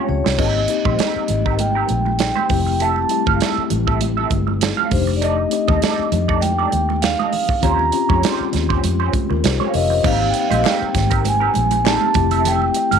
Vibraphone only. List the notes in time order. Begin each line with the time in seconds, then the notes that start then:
0.09 C#5
0.39 D#5
1.60 G5
2.20 G5
2.82 A5
4.92 C5
5.16 D5
5.23 D#5
6.41 G5
7.02 F5
7.63 A#5
9.69 F5
9.76 D#5
10.06 F5
10.30 G5
10.39 F5
10.49 D#5
10.59 F5
10.67 G5
11.28 G#5
11.88 A5
12.48 G5